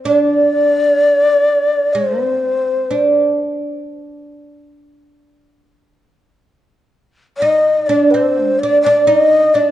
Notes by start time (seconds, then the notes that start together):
0.05 D4 D5
1.93 G#3 C5
2.25 C4
2.91 D4
7.37 D#5
7.42 D#4
7.87 D4 D5
8.11 C4 C5
8.44 G#3
8.60 D4 D5
8.82 D4 D5
9.07 D#4 D#5
9.54 D4 D5